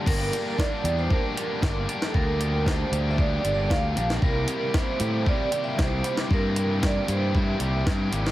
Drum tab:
CC |x---------------|----------------|----------------|----------------|
HH |--x---x---x---x-|--x---x---x---x-|--x---x---x---x-|--x---x---x---x-|
SD |----o-------o--o|----o-------o--o|----o-------o--o|----o-------o--o|
BD |o---o---o---o---|o---o---o---o---|o---o---o---o---|o---o---o---o---|